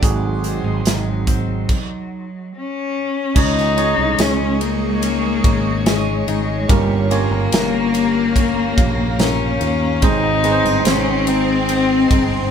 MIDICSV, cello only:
0, 0, Header, 1, 2, 480
1, 0, Start_track
1, 0, Tempo, 833333
1, 14, Time_signature, 4, 2, 24, 8
1, 7205, End_track
2, 0, Start_track
2, 0, Title_t, "Cello"
2, 0, Program_c, 0, 42
2, 17, Note_on_c, 0, 54, 77
2, 1433, Note_off_c, 0, 54, 0
2, 1469, Note_on_c, 0, 61, 100
2, 1948, Note_on_c, 0, 63, 119
2, 1957, Note_off_c, 0, 61, 0
2, 2430, Note_on_c, 0, 61, 108
2, 2439, Note_off_c, 0, 63, 0
2, 2659, Note_off_c, 0, 61, 0
2, 2663, Note_on_c, 0, 58, 110
2, 3385, Note_on_c, 0, 56, 97
2, 3394, Note_off_c, 0, 58, 0
2, 3617, Note_off_c, 0, 56, 0
2, 3621, Note_on_c, 0, 56, 91
2, 3869, Note_on_c, 0, 55, 100
2, 3877, Note_off_c, 0, 56, 0
2, 4102, Note_off_c, 0, 55, 0
2, 4106, Note_on_c, 0, 58, 113
2, 5277, Note_off_c, 0, 58, 0
2, 5302, Note_on_c, 0, 61, 103
2, 5780, Note_on_c, 0, 63, 124
2, 5789, Note_off_c, 0, 61, 0
2, 6258, Note_off_c, 0, 63, 0
2, 6262, Note_on_c, 0, 61, 106
2, 6497, Note_on_c, 0, 60, 115
2, 6506, Note_off_c, 0, 61, 0
2, 7205, Note_off_c, 0, 60, 0
2, 7205, End_track
0, 0, End_of_file